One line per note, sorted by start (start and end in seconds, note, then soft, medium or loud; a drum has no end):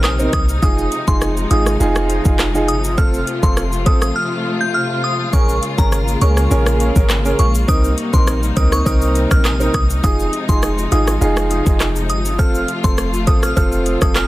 0.00 0.28 A#1 medium
0.00 5.29 C3 medium
0.00 0.60 G3 medium
0.00 0.59 A#3 medium
0.00 2.94 D#4 medium
0.00 0.14 D#6 medium
0.00 cross-stick loud
0.00 clap loud
0.00 shaker medium
0.19 0.38 C4 medium
0.19 0.38 D#4 medium
0.19 0.38 A#4 medium
0.19 shaker medium
0.33 0.59 C2 medium
0.33 0.44 D#6 medium
0.33 kick loud
0.33 cross-stick loud
0.33 closed hi-hat medium
0.33 shaker medium
0.49 shaker medium
0.62 0.88 F1 loud
0.62 5.29 F3 medium
0.62 2.96 G#3 medium
0.62 0.82 D#4 loud
0.62 0.82 F4 medium
0.62 0.82 G#4 loud
0.62 0.82 D#6 loud
0.62 kick loud
0.62 shaker medium
0.78 shaker medium
0.92 closed hi-hat medium
0.92 shaker soft
1.07 1.46 F1 loud
1.07 1.26 D#4 medium
1.07 1.26 F4 medium
1.07 1.26 G#4 medium
1.07 1.17 C6 medium
1.07 kick loud
1.07 shaker medium
1.21 cross-stick loud
1.21 shaker medium
1.37 shaker medium
1.51 1.77 G#1 loud
1.51 1.70 D#4 medium
1.51 1.70 F4 medium
1.51 1.71 G#4 medium
1.51 1.61 D#6 medium
1.51 closed hi-hat medium
1.51 shaker medium
1.66 cross-stick medium
1.66 shaker medium
1.80 2.20 F1 loud
1.80 2.21 D#4 loud
1.80 2.22 F4 medium
1.80 2.22 G#4 loud
1.80 shaker medium
1.96 cross-stick loud
1.96 shaker medium
2.10 closed hi-hat medium
2.10 shaker soft
2.25 2.70 F1 loud
2.25 2.43 D#4 medium
2.25 2.44 F4 medium
2.25 2.44 G#4 medium
2.25 kick medium
2.25 shaker medium
2.39 cross-stick loud
2.39 clap medium
2.39 shaker medium
2.54 2.73 D#4 medium
2.54 2.73 F4 medium
2.54 2.73 G#4 medium
2.54 shaker medium
2.68 2.99 G1 loud
2.68 2.79 D#6 medium
2.68 closed hi-hat medium
2.68 shaker soft
2.84 shaker medium
2.98 3.24 F1 loud
2.98 5.31 A3 medium
2.98 3.17 C4 loud
2.98 3.17 F4 medium
2.98 7.65 F4 medium
2.98 3.18 A4 loud
2.98 3.08 F6 loud
2.98 kick loud
2.98 shaker medium
3.14 shaker medium
3.27 closed hi-hat medium
3.27 shaker soft
3.43 3.88 F1 loud
3.43 3.61 C4 medium
3.43 3.61 F4 medium
3.43 3.61 A4 medium
3.43 3.52 C6 medium
3.43 kick loud
3.43 shaker medium
3.57 cross-stick loud
3.57 shaker medium
3.72 shaker medium
3.86 4.12 A1 loud
3.86 4.06 C4 medium
3.86 4.06 F4 medium
3.86 4.06 A4 medium
3.86 3.97 D#6 medium
3.86 kick loud
3.86 closed hi-hat medium
3.86 shaker medium
4.02 4.11 D#6 medium
4.02 cross-stick medium
4.02 shaker medium
4.16 4.26 F6 medium
4.61 4.70 G6 medium
4.74 4.85 F6 medium
5.04 5.14 D#6 medium
5.33 5.59 A#1 loud
5.33 7.66 C#3 medium
5.33 7.66 G#3 medium
5.33 10.00 A#3 medium
5.33 5.53 C#4 loud
5.33 5.53 G#4 medium
5.33 5.53 A#4 loud
5.33 5.53 C#6 loud
5.33 kick loud
5.33 shaker medium
5.49 shaker medium
5.63 closed hi-hat medium
5.63 shaker soft
5.78 6.16 G#1 medium
5.78 5.96 C#4 medium
5.78 5.97 G#4 medium
5.78 5.97 A#4 medium
5.78 5.88 A#5 medium
5.78 kick loud
5.78 shaker medium
5.92 cross-stick medium
5.92 shaker medium
6.08 shaker medium
6.21 6.47 C#2 loud
6.21 6.41 C#4 medium
6.21 6.41 G#4 medium
6.21 6.41 A#4 medium
6.21 6.32 C#6 medium
6.21 closed hi-hat medium
6.21 shaker soft
6.21 shaker medium
6.37 cross-stick medium
6.37 shaker medium
6.51 6.91 A#1 loud
6.51 6.92 C#4 medium
6.51 6.92 G#4 medium
6.51 6.92 A#4 loud
6.51 shaker medium
6.66 cross-stick loud
6.66 shaker medium
6.80 closed hi-hat medium
6.80 shaker soft
6.80 shaker medium
6.96 7.34 G#1 loud
6.96 7.14 C#4 medium
6.96 7.14 G#4 medium
6.96 7.14 A#4 medium
6.96 kick loud
6.96 shaker medium
7.09 cross-stick loud
7.09 clap loud
7.09 shaker medium
7.25 7.43 C#4 medium
7.25 7.44 G#4 medium
7.25 7.44 A#4 medium
7.25 shaker medium
7.39 7.65 A#1 medium
7.39 7.50 C#6 medium
7.39 closed hi-hat medium
7.39 shaker medium
7.55 shaker medium
7.68 7.94 C2 loud
7.68 14.28 C3 medium
7.68 10.02 G3 medium
7.68 7.88 C4 loud
7.68 7.88 D#4 medium
7.68 12.35 D#4 medium
7.68 7.88 A#4 loud
7.68 7.79 D#6 loud
7.68 kick loud
7.68 shaker medium
7.84 shaker medium
7.98 closed hi-hat medium
7.98 shaker soft
8.13 8.52 A#1 loud
8.13 8.32 C4 medium
8.13 8.32 D#4 medium
8.13 8.32 A#4 medium
8.13 8.23 C6 medium
8.13 kick loud
8.13 shaker medium
8.27 cross-stick loud
8.27 shaker medium
8.43 shaker medium
8.56 8.83 C#2 loud
8.56 8.76 C4 medium
8.56 8.76 D#4 medium
8.56 8.76 A#4 medium
8.56 8.67 D#6 medium
8.56 kick loud
8.56 closed hi-hat medium
8.56 shaker soft
8.56 shaker medium
8.72 8.82 C#6 medium
8.72 cross-stick medium
8.72 shaker medium
8.86 9.26 C2 loud
8.86 9.27 C4 medium
8.86 9.27 D#4 medium
8.86 9.27 A#4 loud
8.86 8.97 D#6 medium
8.86 kick medium
8.86 shaker medium
9.01 shaker medium
9.15 closed hi-hat medium
9.15 shaker soft
9.15 shaker medium
9.31 9.69 A#1 loud
9.31 9.49 C4 medium
9.31 9.49 D#4 medium
9.31 9.40 F6 medium
9.31 kick loud
9.31 cross-stick loud
9.31 shaker medium
9.45 9.55 D#6 medium
9.45 cross-stick loud
9.45 clap loud
9.45 shaker medium
9.60 9.79 C4 medium
9.60 9.79 D#4 medium
9.60 9.79 A#4 medium
9.60 shaker medium
9.74 10.00 C2 medium
9.74 9.85 D#6 medium
9.74 kick loud
9.74 cross-stick medium
9.74 closed hi-hat medium
9.74 shaker soft
9.90 shaker medium
10.03 10.30 F1 loud
10.03 14.28 F3 medium
10.03 12.37 G#3 medium
10.03 10.23 D#4 medium
10.03 10.23 F4 medium
10.03 10.23 G#4 loud
10.03 10.23 D#6 loud
10.03 kick loud
10.03 shaker medium
10.19 shaker medium
10.33 closed hi-hat medium
10.33 shaker soft
10.48 10.87 F1 medium
10.48 10.67 D#4 medium
10.48 10.67 F4 medium
10.48 10.67 G#4 medium
10.48 10.58 C6 medium
10.48 kick loud
10.48 shaker medium
10.63 cross-stick loud
10.63 shaker medium
10.78 shaker medium
10.92 11.18 G#1 loud
10.92 11.11 D#4 medium
10.92 11.12 F4 medium
10.92 11.12 G#4 medium
10.92 11.02 D#6 medium
10.92 closed hi-hat medium
10.92 shaker medium
11.08 cross-stick medium
11.08 shaker medium
11.21 11.61 F1 loud
11.21 11.62 D#4 loud
11.21 11.63 F4 medium
11.21 11.63 G#4 loud
11.21 shaker medium
11.37 cross-stick loud
11.37 shaker medium
11.51 closed hi-hat medium
11.51 shaker soft
11.51 shaker medium
11.66 12.11 F1 loud
11.66 11.85 D#4 medium
11.66 11.85 F4 medium
11.66 11.85 G#4 medium
11.66 kick medium
11.66 shaker medium
11.80 cross-stick medium
11.80 clap medium
11.80 shaker medium
11.96 shaker soft
12.10 12.41 G1 loud
12.10 12.20 D#6 medium
12.10 closed hi-hat medium
12.10 shaker soft
12.25 shaker medium
12.39 12.65 F1 loud
12.39 14.28 A3 medium
12.39 12.58 C4 loud
12.39 12.59 F4 medium
12.39 14.28 F4 medium
12.39 12.59 A4 loud
12.39 12.49 F6 loud
12.39 kick loud
12.39 shaker medium
12.55 shaker medium
12.68 closed hi-hat medium
12.68 shaker soft
12.84 13.29 F1 loud
12.84 13.02 C4 medium
12.84 13.02 F4 medium
12.84 13.03 A4 medium
12.84 12.93 C6 medium
12.84 kick loud
12.84 shaker medium
12.98 cross-stick loud
12.98 shaker medium
13.14 shaker medium
13.27 13.53 A1 loud
13.27 13.47 C4 medium
13.27 13.47 F4 medium
13.27 13.47 A4 medium
13.27 13.38 D#6 medium
13.27 kick loud
13.27 closed hi-hat medium
13.27 shaker medium
13.27 shaker soft
13.43 13.52 F6 medium
13.43 cross-stick medium
13.43 shaker medium
13.56 13.96 F1 loud
13.56 13.98 C4 loud
13.56 13.98 F4 medium
13.56 13.98 A4 loud
13.56 13.67 F6 medium
13.56 kick loud
13.56 shaker medium
13.72 shaker medium
13.86 closed hi-hat medium
13.86 shaker medium
14.01 14.28 F1 medium
14.01 14.20 C4 medium
14.01 14.20 F4 medium
14.01 14.20 A4 medium
14.01 14.11 D#6 medium
14.01 kick loud
14.01 cross-stick loud
14.01 shaker medium
14.15 14.26 F6 medium
14.15 cross-stick loud
14.15 clap loud
14.15 shaker medium